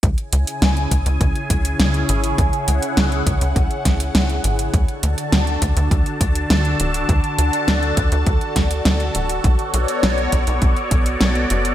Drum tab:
HH |xxxxxxxxxxxxxxxx|xxxxxxxxxxxxxxxx|xxxxxxxxxxxxxxxx|xxxxxxxxxxxxxxxx|
SD |----o-------o---|----o-----o-o---|----o-------o---|----o-----o-o---|
BD |o-----o-o-o-----|o-----o-o-o-----|o-----o-o-o-----|o-----o-o-o-----|

HH |xxxxxxxxxxxxxxxx|
SD |----o-------o---|
BD |o-----o-o-o-----|